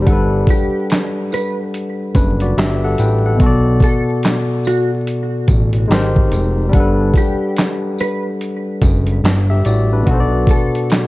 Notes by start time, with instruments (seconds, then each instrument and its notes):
0.02 tine electric piano G3 D4
0.07 analog synth bass G1, tine electric piano A4 F#5, kick, closed hi-hat
0.12 tine electric piano B4
0.47 clean electric guitar G4, kick, closed hi-hat, tambourine
0.90 snare, clap, closed hi-hat
1.32 clean electric guitar B4, closed hi-hat, tambourine
1.74 closed hi-hat
2.15 analog synth bass F#1, tine electric piano D4 B4, kick, closed hi-hat, tambourine
2.40 tine electric piano F#4 D5, closed hi-hat
2.58 analog synth bass G1, tine electric piano G4 E5, snare, clap, closed hi-hat
2.84 tine electric piano A4 F#5
2.98 analog synth bass A1, tine electric piano B4 G5, closed hi-hat, tambourine
3.26 tine electric piano A4 F#5
3.36 tine electric piano B2 B3, closed hi-hat
3.40 analog synth bass B1, tine electric piano F#4 A4, kick
3.46 tine electric piano D5
3.80 clean electric guitar A4, kick, closed hi-hat, tambourine
4.23 snare, clap, closed hi-hat
4.65 clean electric guitar F#4, closed hi-hat, tambourine
5.07 closed hi-hat
5.48 analog synth bass A1, kick, closed hi-hat, tambourine
5.73 closed hi-hat
5.88 analog synth bass G#1, tine electric piano G#3 D#4 G4, closed hi-hat
5.92 tine electric piano A#4 C5, snare, clap
6.16 kick
6.32 analog synth bass F1, closed hi-hat, tambourine
6.69 tine electric piano G3 D4
6.73 analog synth bass G1, tine electric piano A4 F#5, kick, closed hi-hat
6.80 tine electric piano B4
7.14 clean electric guitar G4, kick, closed hi-hat, tambourine
7.57 snare, clap, closed hi-hat
7.98 clean electric guitar B4, closed hi-hat, tambourine
8.41 closed hi-hat
8.82 analog synth bass F#1, kick, closed hi-hat, tambourine
9.07 closed hi-hat
9.24 analog synth bass G1, snare, clap, closed hi-hat
9.50 tine electric piano G4 E5
9.65 analog synth bass A1, tine electric piano F#4 D5, closed hi-hat, tambourine
9.93 tine electric piano D4 B4
10.03 tine electric piano B2 B3, kick, closed hi-hat
10.07 analog synth bass B1, tine electric piano F#4 A4
10.14 tine electric piano C5
10.20 tine electric piano D5
10.47 clean electric guitar A4, kick, closed hi-hat, tambourine
10.75 closed hi-hat
10.90 snare, clap, closed hi-hat